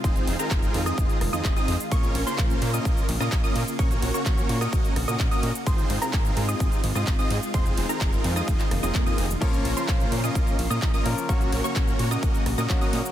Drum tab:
CC |----------------|----------------|----------------|----------------|
RD |----------------|x-x-x-x-x-x-x-x-|x-x-x-x-x-x-x-x-|x-x-x-x-x-x-x-x-|
HH |xxoxxxo-xxo-xxo-|xxoxxxoxxxo-xxo-|xxoxxxoxxxoxxxo-|xxoxxxo-xxoxxxo-|
SH |xx-xxx-xxx-xxx-x|xx-xxx-xxx-xxx-x|xx-xxx-xxx-xxx-x|xx-xxx-xxx-xxx-x|
CP |----x-------x---|----x-------x---|----x-------x---|----x-------x---|
SD |-------r--r-----|-----------r----|-------r--r-----|-----------r----|
BD |o---o---o---o---|o---o---o---o---|o---o---o---o---|o---o---o---o---|

CC |----------------|x---------------|----------------|
RD |x-x-x-x-x-x-x-x-|x-x-x-x-x-x-x-x-|x-x-x-x-x-x-x-x-|
HH |xxoxxxoxxxoxxxo-|xxoxxxoxxxo-xxo-|xxoxxxoxxxoxxxo-|
SH |xx-xxx-xxx-xxx-x|xx-xxx-xxx-xxx-x|xx-xxx-xxx-xxx-x|
CP |----x----x--x---|----x-------x---|----x-------x---|
SD |-------r--r-----|-----------r----|-------r--r-----|
BD |o---o---o---o---|o---o---o---o---|o---o---o---o---|